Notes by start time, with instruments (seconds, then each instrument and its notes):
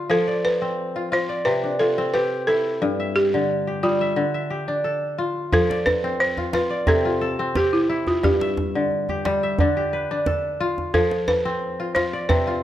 Already playing: kora D3 D4 F4 G4 A4
0.10 kora F3, balafon A4
0.28 kora D5
0.45 balafon B4
0.62 kora C4
0.96 kora F4
1.12 kora F4, balafon C5
1.29 kora D5
1.45 kora C3, balafon B4
1.64 kora D4
1.79 kora F4, balafon A4
1.98 kora C4
2.14 kora G4, balafon B4
2.47 kora E4, balafon A4
2.82 kora G2
3.00 kora E5
3.16 balafon G4
3.34 kora D3
3.67 kora G4
3.83 kora G3, balafon F4
4.01 kora E5
4.16 kora D3
4.34 kora E5
4.50 kora G4
4.68 kora D4
4.84 kora A4
5.18 kora F4
5.52 kora F3, balafon A4, djembe bass
5.70 kora D5, djembe slap
5.86 balafon B4, djembe tone
6.04 kora C4
6.20 balafon C5, djembe slap
6.37 kora F4, djembe slap, djembe tone
6.53 kora F4, balafon B4, djembe slap
6.70 kora D5
6.87 kora C3 C4, balafon A4, djembe tone, djembe bass
7.05 kora F4
7.21 kora A4
7.39 kora C4
7.55 kora G4, balafon G4, djembe slap, djembe tone
7.73 balafon E4
7.89 kora E4
8.07 balafon F4, djembe tone
8.23 kora G2, balafon G4, djembe bass
8.41 kora E5, djembe slap
8.57 djembe tone
8.75 kora D3
8.91 djembe slap
9.09 kora G4, djembe slap, djembe tone
9.25 kora G3, djembe slap
9.43 kora E5
9.58 kora D3 D4, djembe tone, djembe bass
9.77 kora G4
9.93 kora B4
10.11 kora D4
10.26 kora A4, djembe slap, djembe tone
10.60 kora F4
10.78 djembe tone
10.94 kora F3, balafon A4, djembe bass
11.11 djembe slap
11.28 balafon B4, djembe tone
11.45 kora C4
11.62 djembe slap
11.80 kora F4
11.95 kora F4, balafon C5, djembe slap
12.13 kora D5
12.29 kora C3 C4, balafon B4, djembe tone, djembe bass
12.47 kora F4